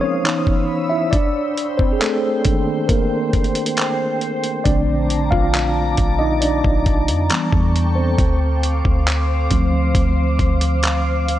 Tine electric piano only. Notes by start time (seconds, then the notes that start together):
Already playing: F3 A#3 C4 D#4 A#4 C5
0.01 C#4 C#5
0.24 E3 B3 D#4
0.89 E4 E5
1.11 D4 D5
1.77 C4 C5
1.93 G#4
2.00 A3 A4
2.45 D#3 A#3 D4
2.88 A#3 A#4
4.64 D3 A3 C4 D4 D5
5.31 F4 F5
6.19 D#4 D#5
6.41 D4 D5
7.30 E3 G3 B3
7.95 C4 C5
9.50 F3 A3 C4